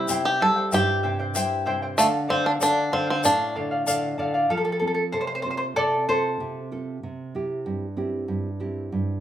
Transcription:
Already playing: E4
0.08 C3 E4 G4 C5 E5 G5, shaker
0.25 G4
0.40 G3 E4 A4 C5 E5 G5
0.56 E4 C5 G5
0.72 G2 E4 G4 C5 E5 G5, shaker
1.03 C3 E4 C5 E5 G5
1.19 E4 C5 G5
1.35 G3 E4 G4 C5 E5 G5, shaker
1.66 C3 E4 C5 E5 G5
1.82 E4 C5 G5
1.98 D3 A3 A4 D5 F5, shaker
2.28 D3 C4 A4 D5 F5
2.44 D4 D5 F5
2.60 D3 D4 A4 D5 F5, shaker
2.92 D3 C4 A4 D5 F5
3.07 C4 D5 F5
3.23 A2 D4 A4 D5 F5, shaker
3.55 D3 A4 D5 F5
3.71 D5 F5
3.86 D3 A4 D5 F5, shaker
4.18 D3 A4 D5 F5
4.34 D5 F5
4.50 F3 F4 A4
4.57 A4
4.65 A4
4.72 A4
4.80 C4 F4 A4
4.87 A4
4.94 A4
5.12 C3 A4 C5
5.21 C5
5.27 C5
5.35 C5
5.42 C4 F4 A4 C5
5.51 C5
5.57 C5
5.76 C3 A4 D5
6.08 C4 F4 A4 C5
6.40 C3
6.72 C4 F4 A4
7.03 C3
7.35 C4 E4 G4
7.66 G2
7.97 C4 E4 G4
8.28 G2
8.60 C4 E4 G4
8.92 G2

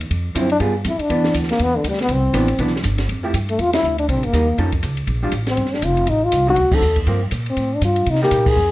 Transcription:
Already playing: D#2
0.01 ride
0.10 F2, kick, ride
0.35 F#2 D3 F3 C4 E4, kick, hi-hat pedal, ride
0.39 C4
0.50 D4, ride
0.60 G2 G3 B3 F4 G#4, kick, ride
0.85 F2, kick, hi-hat pedal, ride
0.89 E4
0.99 D4, muted upright bass stroke, ride
1.10 E2 E3 B3 D4, kick, ride
1.24 snare
1.34 D2, kick, hi-hat pedal, ride
1.43 snare
1.49 A#3, snare, ride
1.59 E2 B3, kick, ride
1.76 D3
1.84 D2, kick, hi-hat pedal, ride
1.88 G3
1.93 snare
1.99 B3, snare, ride
2.09 C2, kick, ride
2.13 C4
2.33 A1 E3 B3 D4, kick, hi-hat pedal, ride
2.48 ride
2.59 B1 E3 B3 D4, kick, ride
2.67 snare
2.76 snare
2.83 G1, kick, hi-hat pedal, ride
2.98 snare, ride
3.09 F2, kick, ride
3.23 F3 A3 E4 G4
3.34 G2, kick, hi-hat pedal, ride
3.49 A3, ride
3.59 E2 F4, kick, ride
3.73 E4, snare, ride
3.83 D2, hi-hat pedal
3.98 D4, ride
4.08 C2 C4, kick, ride
4.16 A#1
4.23 G1 A#3, ride
4.33 D#2 G3 A#3 D#4, kick, hi-hat pedal, ride
4.58 F2 F3 C#4 D#4 A4, kick, ride
4.72 kick, ride
4.83 C#2, kick, hi-hat pedal, ride
4.97 ride
5.07 A#1, kick, ride
5.23 G3 D4 F4
5.32 A1, kick, hi-hat pedal, ride
5.47 C4, snare, ride
5.57 G1, kick, ride
5.66 snare
5.74 D4, snare
5.82 F1 F4, kick, hi-hat pedal, ride
5.97 ride
6.07 A1 D#4, kick, ride
6.24 F4
6.32 C2, kick, hi-hat pedal, ride
6.47 D3 F#3 C4 D#4 F#4
6.56 D2, kick, ride
6.72 D3 F#3 C4 D#4 A4, kick, crash
6.82 D#2, hi-hat pedal
6.96 kick, ride
7.07 G2 F3 A#3 C4, kick, ride
7.31 A#2, kick, hi-hat pedal, ride
7.46 C4, ride
7.57 A2, kick, ride
7.75 D4
7.81 G2 F4, kick, hi-hat pedal, ride
7.96 ride
8.06 C3 D#4, kick, ride
8.15 snare
8.22 G3 A#3 D#4 G4, snare
8.31 A#2, kick, hi-hat pedal, ride
8.46 G#4, kick, crash
8.56 F2

